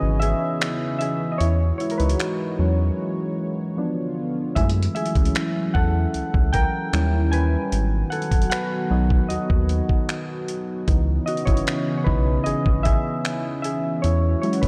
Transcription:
Already playing: C#3 E3 B3 C#4 D#4 E4 F#4 G#4 B4 C#5 D#5
0.02 G#1
0.20 G#4 E5, closed hi-hat
0.61 finger snap, closed hi-hat
0.99 G#4 E5, closed hi-hat
1.32 D#5
1.38 E2 G#3 E4 F#4 C#5, closed hi-hat
1.78 E4 C#5, closed hi-hat
1.90 A#4, closed hi-hat
1.98 C#2 D#4 B4, closed hi-hat
2.10 closed hi-hat
2.20 finger snap, closed hi-hat
2.59 E2 F#3 G#3 C#4
3.77 D3 F3 B3 D4 F4
4.55 F#2 E3 F#3 G#3 A3 C#4 E4 G#4 E5, kick, closed hi-hat
4.69 closed hi-hat
4.83 closed hi-hat
4.95 G#4 E5, closed hi-hat
5.06 closed hi-hat
5.15 C#2, kick, closed hi-hat
5.25 closed hi-hat
5.35 finger snap, closed hi-hat
5.74 E2 A4 F#5, kick
6.14 C#2, closed hi-hat
6.34 C#2, kick
6.53 A#4 G5, kick, closed hi-hat
6.93 D#2 D#3 G3 C#4 E4, finger snap, closed hi-hat
7.32 B4 G#5, closed hi-hat
7.72 G#1 F#3 B3 F#4, closed hi-hat
8.10 A4 F#5, closed hi-hat
8.22 closed hi-hat
8.31 F#1, kick, closed hi-hat
8.42 closed hi-hat
8.50 B4 F#5, finger snap, closed hi-hat
8.90 B1 F#3 B3 D#4
9.10 kick
9.29 D#2 F#4 D#5, closed hi-hat
9.50 D#2, kick
9.69 closed hi-hat
9.89 kick
10.09 finger snap, closed hi-hat
10.48 closed hi-hat
10.87 C#2 C#3 E3 B3 C#4 D#4, kick, closed hi-hat
11.26 F#4 D#5, closed hi-hat
11.37 closed hi-hat
11.45 G#1 E4 C#5, kick, closed hi-hat
11.57 closed hi-hat
11.67 finger snap, closed hi-hat
11.98 C#5
12.04 B1 D#4 B4, kick
12.44 G#1 G#4 D#5, closed hi-hat
12.66 G#1, kick
12.83 G#4 E5, kick, closed hi-hat
13.25 finger snap, closed hi-hat
13.62 G#4 E5, closed hi-hat
14.02 E2 E3 G#3 C#4 E4 F#4 C#5, closed hi-hat
14.42 F#3 G#3 C#4 E4 C#5, closed hi-hat
14.53 closed hi-hat
14.62 B1 D#4 B4, kick, closed hi-hat

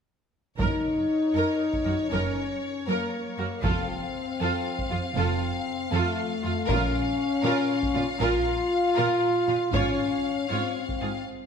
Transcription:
0.58 F#1 F#2 D#4 A#4 C#5, taiko
1.35 F#2 A#4
1.73 taiko
1.85 F#2 F#4 A#4
2.09 F#1 F#2 C#4 A#4
2.87 F#2 A#3 A#4
3.38 F#2 F#4 A#4
3.63 F1 F2 C4 F4 A4 F5, taiko
4.39 F2 F4 A4
4.79 taiko
4.91 F2 F4
5.14 F1 F2 C4 F4 A4
5.91 F2 A3 F4 A4
6.43 F2 F4
6.67 A#1 A#2 C#4 F4 A#4 F5, taiko
7.44 A#2 F4 A#4
7.83 taiko
7.94 A#2 F4
8.20 A#1 A#2 F4 A#4
8.96 A#2 F4 A#4
9.48 A#2 F4
9.72 G#1 G#2 C#4 F4 C#5 F5, taiko
10.49 G#2 C4 F4 C#5
10.89 taiko
11.01 G#2 F4 G#4

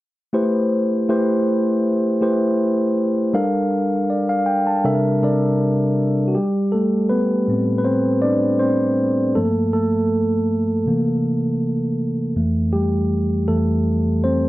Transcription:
0.33 A3 E4 G4 B4 C5
1.09 A3 E4 G4 B4 C5
2.21 A3 E4 G4 B4 C5
3.34 G3 D4 A4 A#4 F5
4.10 D5
4.29 F5
4.46 G5
4.67 A5
4.84 C3 G3 D4 A4 A#4 E5
5.23 C3 G3 D4 A4 A#4 D5
6.28 F#4
6.35 G3 G4
6.72 A3 A4
7.09 B3 B4
7.48 A2 G3 C4
7.78 B4
7.85 C4 C5
8.22 D4 D5
8.59 C4 C5
9.35 G2 F3 A3 A#3 A4
9.73 A3 A4
10.86 C3 E3 A#3
12.36 F2 E3 A3
12.73 G3 G4
13.48 F2 E3 A3 A4
14.24 C4 C5

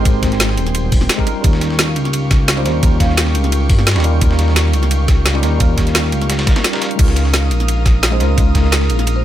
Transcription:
Already playing: G#3 C4 D#4 G4 A#4 C5 G5 C6
0.02 G#1 G#3 C4 D#4, kick, closed hi-hat, ride
0.07 G4 C5
0.23 kick, snare, closed hi-hat, ride
0.32 snare, closed hi-hat
0.40 snare, closed hi-hat, ride
0.49 snare
0.57 D#1, closed hi-hat, ride
0.67 snare, closed hi-hat
0.75 closed hi-hat, ride
0.84 D#1
0.92 kick, closed hi-hat, open hi-hat
1.01 snare
1.09 snare, closed hi-hat, ride
1.17 G#3 C4 D#4 G4 A#4, kick
1.26 G3 C#4 D#4 F4 G4 A#4 F5 C#6, closed hi-hat, ride
1.41 D#2 G3 C#4 D#4, kick, closed hi-hat, ride
1.47 A#4
1.53 snare
1.61 snare, closed hi-hat, ride
1.70 snare
1.79 snare, closed hi-hat, ride
1.88 snare
1.96 C#2, closed hi-hat, ride
2.05 snare, closed hi-hat
2.13 closed hi-hat, ride
2.31 kick, snare, closed hi-hat, ride
2.48 snare, closed hi-hat, ride
2.56 G3 C#4 D#4 F4 G4 C5, ride
2.64 D#2 G3 C#4 D#4 F4 A#4 C5, snare, closed hi-hat, ride
2.80 D#2 G3 C#4 D#4, kick, closed hi-hat, ride
2.84 F4 A#4
3.00 F5, kick, snare, closed hi-hat, ride
3.09 snare
3.17 snare, closed hi-hat, ride
3.27 snare
3.35 C#2, closed hi-hat, ride
3.44 snare, closed hi-hat
3.52 closed hi-hat, ride
3.69 G2, kick, closed hi-hat, open hi-hat
3.79 snare
3.87 snare, closed hi-hat, ride
3.91 G3, snare, ride
3.95 D#2 C#4 D#4 F4 G4, snare, ride
4.00 G3 C#4, snare, ride
4.04 D#4 F4 A#4, closed hi-hat, ride
4.19 D#2 G3 C#4 D#4, kick, closed hi-hat, ride
4.23 F4 A#4
4.31 snare
4.39 snare, closed hi-hat, ride
4.48 snare
4.56 snare, closed hi-hat, ride
4.65 snare
4.73 C#2, closed hi-hat, ride
4.83 snare, closed hi-hat
4.91 closed hi-hat, ride
5.08 kick, snare, closed hi-hat, ride
5.26 snare, closed hi-hat, ride
5.33 G3 C#4 D#4 F4 G4, ride
5.41 D#2 G3 C#4 D#4 F4 A#4, snare, closed hi-hat, ride
5.57 D#2 G3 C#4 D#4, kick, closed hi-hat, ride
5.62 F4 A#4
5.78 kick, snare, closed hi-hat, ride
5.87 snare, closed hi-hat
5.95 snare, closed hi-hat, ride
6.04 snare
6.12 C#2, closed hi-hat, ride
6.22 snare, closed hi-hat
6.30 snare, closed hi-hat, ride
6.39 snare, ride
6.45 G3 C#4 D#4 F4 A#4, kick, snare, closed hi-hat, ride
6.56 snare, ride
6.64 snare, closed hi-hat, ride
6.72 G3 C#4 D#4 F4 A#4, snare, ride
6.82 snare, closed hi-hat, ride
6.91 closed hi-hat
6.96 C#2 G#3 C#4 D#4 A#4 D#6, kick, closed hi-hat, crash, ride
7.00 F4 A#4
7.08 snare
7.16 snare, closed hi-hat, ride
7.25 snare
7.33 snare, closed hi-hat, ride
7.43 snare
7.51 A#1, closed hi-hat, ride
7.60 snare, closed hi-hat
7.68 closed hi-hat, ride
7.86 kick, snare, closed hi-hat, ride
8.03 snare, closed hi-hat, ride
8.11 G#3 C#4 D#4 F4 G#4 C5, ride
8.19 C#2 G#3 C#4 D#4 F4 A#4 C5, snare, closed hi-hat, ride
8.35 C#2 G#3 C#4 D#4, kick, closed hi-hat, ride
8.39 F4 A#4
8.55 kick, snare, closed hi-hat, ride
8.64 A#4, snare
8.72 A#4, snare, closed hi-hat, ride
8.81 snare
8.90 A#1, closed hi-hat, ride
8.99 snare, closed hi-hat
9.07 closed hi-hat, ride
9.16 C5

